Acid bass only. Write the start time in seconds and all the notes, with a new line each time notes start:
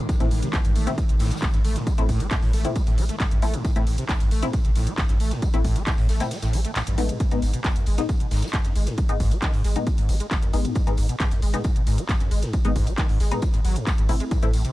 0.09 A2
0.20 A2
0.31 A2
0.42 C3
0.53 A1
0.65 G2
0.76 A3
0.87 A2
0.98 A2
1.09 C3
1.20 A2
1.32 A3
1.42 A1
1.54 G2
1.65 A3
1.76 A2
1.87 A3
1.98 A2
2.09 A2
2.21 A3
2.31 A1
2.43 A2
2.54 A3
2.65 A2
2.76 A3
2.87 A2
2.98 A3
3.09 A3
3.20 A1
3.31 G2
3.42 A3
3.54 A2
3.65 A2
3.76 A2
3.87 A2
3.98 C3
4.09 A1
4.21 G2
4.31 A3
4.43 A2
4.54 A2
4.65 C3
4.76 A2
4.87 A3
4.98 A1
5.09 G2
5.20 A3
5.32 A2
5.42 A3
5.54 A2
5.65 A2
5.76 A3
5.87 A1
5.98 A2
6.09 A3
6.20 A2
6.31 A3
6.43 A2
6.54 A3
6.65 A3
6.76 A1
6.87 G2
6.98 A3
7.09 A2
7.20 G#2
7.31 G#2
7.43 G#2
7.54 B2
7.65 G#1
7.76 F#2
7.87 G#3
7.98 G#2
8.09 G#2
8.20 B2
8.31 G#2
8.43 G#3
8.54 G#1
8.65 F#2
8.76 G#3
8.87 G#2
8.98 G#3
9.09 G#2
9.20 G#2
9.31 G#3
9.42 D#3
9.53 G#2
9.64 G#3
9.76 G#2
9.87 G#3
9.98 G#2
10.09 G#3
10.20 G#3
10.31 G#1
10.42 F#2
10.53 G#3
10.65 G#2
10.75 G#2
10.87 G#2
10.98 G#2
11.09 B2
11.20 G#1
11.31 F#2
11.42 G#3
11.54 G#2
11.65 G#2
11.76 B2
11.87 G#2
11.98 G#3
12.09 G#1
12.20 F#2
12.31 G#3
12.42 G#2
12.53 G#3
12.65 G#2
12.76 G#2
12.87 G#3
12.98 D#3
13.09 G#2
13.20 G#3
13.31 G#2
13.43 G#3
13.54 G#2
13.65 F#3
13.76 G#2
13.87 F#2
13.98 G#2
14.09 B2
14.20 G#3
14.31 A2
14.43 A2
14.54 A2
14.65 C3